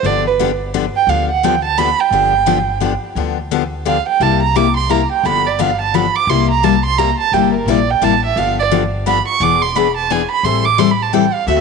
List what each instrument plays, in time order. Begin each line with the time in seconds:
0.03 upright bass G1, steel-string acoustic guitar D3 F3 B3 D4 G4, violin D5
0.27 violin B4
0.39 steel-string acoustic guitar D3 F3 B3 D4 G4
0.74 steel-string acoustic guitar D3 F3 B3 D4 G4
0.96 violin G5
1.07 upright bass D2, steel-string acoustic guitar D3 F3 B3 D4 G4, violin F5
1.31 violin F#5
1.43 steel-string acoustic guitar D3 F3 B3 D4 G4, violin G5
1.65 violin A5
1.78 steel-string acoustic guitar D3 F3 B3 D4 G4, violin B5
2.00 violin G5
2.11 upright bass G1, steel-string acoustic guitar D3 F3 B3 D4 G4
2.46 steel-string acoustic guitar D3 F3 B3 D4 G4
2.80 steel-string acoustic guitar D3 F3 B3 D4 G4
3.15 upright bass D2, steel-string acoustic guitar D3 F3 B3 D4 G4
3.51 steel-string acoustic guitar D3 F3 B3 D4 G4
3.85 steel-string acoustic guitar D3 F3 B3 D4 G4, violin F5
4.09 violin G5
4.20 upright bass C2, steel-string acoustic guitar C3 G3 A#3 E4 G4, violin A5
4.43 violin A#5
4.56 steel-string acoustic guitar C3 G3 A#3 E4 G4, violin D6
4.77 violin C6
4.89 steel-string acoustic guitar C3 G3 A#3 E4 G4, violin A#5
5.12 violin G5
5.23 upright bass G1, steel-string acoustic guitar D3 F3 B3 D4 G4, violin B5
5.47 violin D5
5.59 steel-string acoustic guitar D3 F3 B3 D4 G4, violin F5
5.81 violin A5
5.94 steel-string acoustic guitar D3 F3 B3 D4 G4, violin B5
6.16 violin D6
6.27 upright bass C2, steel-string acoustic guitar C3 G3 A#3 E4 G4, violin C6
6.51 violin A#5
6.63 steel-string acoustic guitar C3 G3 A#3 E4 G4, violin A5
6.86 violin C6
6.98 steel-string acoustic guitar C3 G3 A#3 E4 G4, violin A#5
7.20 violin A5
7.32 upright bass G1, steel-string acoustic guitar C3 G3 A#3 E4 G4, violin G5
7.54 violin A#4
7.66 upright bass A#1, steel-string acoustic guitar C3 G3 A#3 E4 G4, violin D5
7.91 violin G5
8.01 upright bass A1, steel-string acoustic guitar C3 G3 A#3 E4 G4, violin A5
8.25 violin E5
8.36 upright bass G1, steel-string acoustic guitar D3 F3 B3 D4 G4, violin F5
8.59 violin D5
8.71 steel-string acoustic guitar D3 F3 B3 D4 G4
9.06 steel-string acoustic guitar D3 F3 B3 D4 G4, violin B5
9.28 violin C#6
9.40 upright bass E1, steel-string acoustic guitar E3 B3 D4 G#4, violin D6
9.62 violin C6
9.76 steel-string acoustic guitar E3 B3 D4 G#4, violin B5
9.97 violin A5
10.10 steel-string acoustic guitar E3 B3 D4 G#4, violin G#5
10.31 violin B5
10.43 upright bass A1, steel-string acoustic guitar E3 G3 C4 E4 A4, violin C6
10.65 violin D6
10.78 steel-string acoustic guitar E3 G3 C4 E4 A4, violin C6
10.91 violin B5
11.03 violin A5
11.13 steel-string acoustic guitar E3 G3 C4 E4 A4, violin G5
11.34 violin F5
11.47 upright bass D2, steel-string acoustic guitar D3 A3 C4 F#4 A4, violin E5